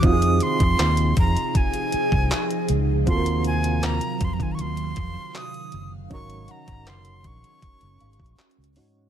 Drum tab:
HH |x--x--x--x--x--x--x--x--x--x--x-----x--x--x-----|x--x--x--x--x--x--x--x--x--x--x-----x--x--x-----|x--x--x--x--x--x--x--x--x--x--x-x-x-x-x-x-o-----|
CP |------------x-----------------------x-----------|------------x-----------------------x-----------|------------x-----------------------x-----------|
BD |o--------o--------o-----o--------o--------------|o-----------------o--o--------o-----------------|o--------o--------o-----o--------o--------------|